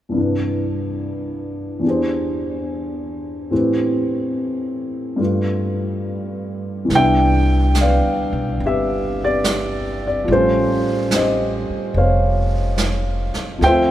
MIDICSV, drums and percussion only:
0, 0, Header, 1, 2, 480
1, 0, Start_track
1, 0, Key_signature, 0, "major"
1, 0, Tempo, 846262
1, 79, Time_signature, 4, 2, 24, 8
1, 4878, Tempo, 836820
1, 7923, End_track
2, 0, Start_track
2, 0, Title_t, "Drums"
2, 3913, Note_on_c, 9, 25, 30
2, 3913, Note_on_c, 9, 38, 26
2, 3970, Note_off_c, 9, 38, 0
2, 4393, Note_on_c, 9, 38, 41
2, 4393, Note_on_c, 9, 44, 51
2, 4450, Note_off_c, 9, 38, 0
2, 4450, Note_off_c, 9, 44, 0
2, 4878, Note_off_c, 9, 25, 0
2, 4878, Note_on_c, 9, 25, 32
2, 5360, Note_on_c, 9, 38, 41
2, 5360, Note_on_c, 9, 44, 48
2, 5418, Note_off_c, 9, 38, 0
2, 5418, Note_off_c, 9, 44, 0
2, 5839, Note_off_c, 9, 25, 0
2, 5839, Note_on_c, 9, 25, 34
2, 6317, Note_on_c, 9, 38, 43
2, 6317, Note_on_c, 9, 44, 50
2, 6374, Note_off_c, 9, 38, 0
2, 6374, Note_off_c, 9, 44, 0
2, 6795, Note_off_c, 9, 25, 0
2, 6795, Note_on_c, 9, 25, 33
2, 7274, Note_on_c, 9, 38, 41
2, 7274, Note_on_c, 9, 44, 46
2, 7331, Note_off_c, 9, 38, 0
2, 7331, Note_off_c, 9, 44, 0
2, 7596, Note_on_c, 9, 38, 25
2, 7653, Note_off_c, 9, 38, 0
2, 7757, Note_off_c, 9, 25, 0
2, 7757, Note_on_c, 9, 25, 36
2, 7757, Note_on_c, 9, 38, 27
2, 7814, Note_off_c, 9, 38, 0
2, 7923, Note_off_c, 9, 25, 0
2, 7923, End_track
0, 0, End_of_file